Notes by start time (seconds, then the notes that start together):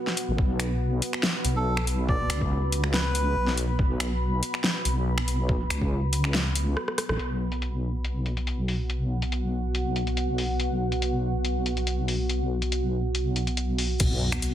Already playing: B3 F#4 F#5
0.07 snare
0.17 closed hi-hat
0.28 A1
0.38 B1 B5, kick
0.60 finger snap, closed hi-hat
1.02 closed hi-hat
1.13 finger snap
1.23 snare
1.45 B1, closed hi-hat
1.56 A4
1.77 finger snap
1.87 closed hi-hat
2.09 D5, kick
2.30 C#2, finger snap, closed hi-hat
2.41 kick
2.72 closed hi-hat
2.84 finger snap
2.93 B4, snare
3.15 closed hi-hat
3.36 B1
3.47 snare
3.58 closed hi-hat
3.79 B1, kick
4.00 finger snap, closed hi-hat
4.43 closed hi-hat
4.54 finger snap
4.64 snare
4.85 B1, closed hi-hat
5.18 finger snap
5.28 closed hi-hat
5.49 kick
5.70 C#2, finger snap, closed hi-hat
5.82 kick
6.13 closed hi-hat
6.24 finger snap
6.34 snare
6.55 closed hi-hat
6.77 cross-stick
6.88 cross-stick
6.98 cross-stick, closed hi-hat
7.09 A1, cross-stick
7.19 B1 B3 F#4 F#5, closed hi-hat
7.52 closed hi-hat
7.62 closed hi-hat
8.04 closed hi-hat
8.26 closed hi-hat
8.37 closed hi-hat
8.47 closed hi-hat
8.68 open hi-hat
8.90 closed hi-hat
9.22 closed hi-hat
9.32 closed hi-hat
9.75 closed hi-hat
9.96 closed hi-hat
10.07 closed hi-hat
10.17 closed hi-hat
10.38 open hi-hat
10.60 closed hi-hat
10.92 closed hi-hat
11.02 closed hi-hat
11.45 closed hi-hat
11.66 closed hi-hat
11.77 closed hi-hat
11.87 closed hi-hat
12.08 open hi-hat
12.29 closed hi-hat
12.62 closed hi-hat
12.72 closed hi-hat
13.15 closed hi-hat
13.36 closed hi-hat
13.47 closed hi-hat
13.57 closed hi-hat
13.78 open hi-hat
14.00 B1 B3 F#4 F#5, kick, closed hi-hat, crash, sub drop
14.32 finger snap, closed hi-hat
14.42 closed hi-hat